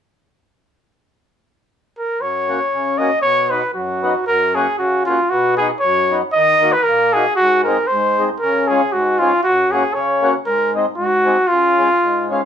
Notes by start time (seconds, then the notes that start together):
1.98 A#4
2.20 F#2 C#5
2.48 A#3 C#4 F#4
2.73 C#3
2.98 A#3 C#4 F#4 D#5
3.22 B2 C#5
3.50 B3 D#4 F#4 B4
3.74 F#2 F#4
4.02 B3 D#4 F#4
4.27 F#2 A#4
4.55 A#3 C#4 F#4 G#4
4.79 C#3 F#4
5.06 A#3 C#4 F4 F#4
5.30 B2 F#4
5.57 B3 D#4 F#4 G#4
5.80 F#2 C#5
6.10 B3 D#4 F#4
6.32 D#3 D#5
6.62 A#3 D#4 F#4
6.73 B4
6.83 A#2 A#4
7.13 A#3 D#4 F#4 G#4
7.36 G#2 F#4
7.64 G#3 C4 A#4
7.68 D#4
7.87 C5
7.92 G#2
8.19 G#3 C4 D#4
8.39 C#3 A#4
8.68 G#3 C#4 F4 G#4
8.93 G#2 F#4
9.19 G#3 C#4 F4
9.23 F4
9.43 F#2 F#4
9.72 A#3 C#4 F#4 G#4
9.94 C#3 C#5
10.22 A#3 C#4 F#4
10.46 G#2 A#4
10.74 G#3 C4 D#4
10.97 G#2 F#4
11.25 G#3 C4 D#4
11.48 C#3 F4
11.79 G#3 C#4 F4
12.03 G#2
12.30 G#3 C#4 F4